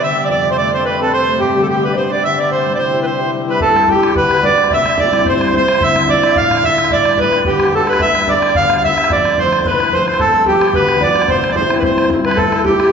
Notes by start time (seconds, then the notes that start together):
Already playing: G2 C3 G3 A3 B3 D4
0.01 D3 E5
0.17 B3
0.23 D5
0.29 F2 D5
0.44 C3
0.50 C5
0.56 A3 D5
0.71 C4 C5
0.84 A3 B4
0.93 B4
0.99 C4 A4
1.03 B4
1.11 C3 C5
1.27 A3
1.40 G2 G4
1.55 D3
1.62 A4
1.67 B3 G4
1.83 D4 B4
1.92 B3 C5 D5
1.97 C5
2.10 D4 D5
2.22 D3 E5
2.37 B3 D5
2.50 C3 C5
2.66 G3
2.75 E4 C5 D5
2.93 G4
3.03 E4 B4 C5
3.21 G4
3.33 G3
3.48 E4 B4
3.60 G2 A4, bodhran
3.76 bodhran
3.88 G3 B3 D4 G4, bodhran
4.03 bodhran
4.15 D2 B4, bodhran
4.31 bodhran
4.43 G3 B3 D4 D5, bodhran
4.58 bodhran
4.64 bodhran
4.70 C3 E5, bodhran
4.86 bodhran
4.97 G3 C4 E4 D5, bodhran
5.13 D5, bodhran
5.25 G2 C5, bodhran
5.41 bodhran
5.53 G3 C4 E4 C5, bodhran
5.68 bodhran
5.75 bodhran
5.81 D3 E5, bodhran
5.96 bodhran
6.08 D4 E4 F4 D5, bodhran
6.23 E5, bodhran
6.35 A2 F5, bodhran
6.51 bodhran
6.63 D4 E4 F4 E5, bodhran
6.78 bodhran
6.84 bodhran
6.90 G2 D5, bodhran
7.05 bodhran
7.18 G3 B3 D4 B4, bodhran
7.33 bodhran
7.45 D2 G4, bodhran
7.60 bodhran
7.72 G3 B3 D4 A4, bodhran
7.87 B4, bodhran
7.93 bodhran
7.99 G2 E5, bodhran
8.15 bodhran
8.27 G3 B3 D4 D5, bodhran
8.42 bodhran
8.55 D2 F5, bodhran
8.70 bodhran
8.77 F5
8.82 G3 B3 D4 E5, bodhran
8.97 bodhran
9.04 bodhran
9.10 F2 D5, bodhran
9.25 bodhran
9.37 F3 A3 C4 C5, bodhran
9.53 bodhran
9.65 C2 B4, bodhran
9.80 bodhran
9.92 F3 A3 C4 C5, bodhran
10.06 C5, bodhran
10.14 bodhran
10.18 G2 A4, bodhran
10.46 F3 G3 B3 G4, bodhran
10.61 bodhran
10.73 D2 B4, bodhran
10.89 bodhran
11.00 F3 G3 B3 D5, bodhran
11.16 bodhran
11.22 bodhran
11.28 C3 C5, bodhran
11.44 bodhran
11.51 D5
11.55 G3 C4 E4 C5, bodhran
11.64 C5
11.70 C5, bodhran
11.79 G2 B4 C5, bodhran
11.84 C5
11.98 bodhran
12.10 G3 C4 E4, bodhran
12.25 B4, bodhran
12.31 bodhran
12.37 A4, bodhran
12.52 bodhran
12.65 G4, bodhran
12.80 bodhran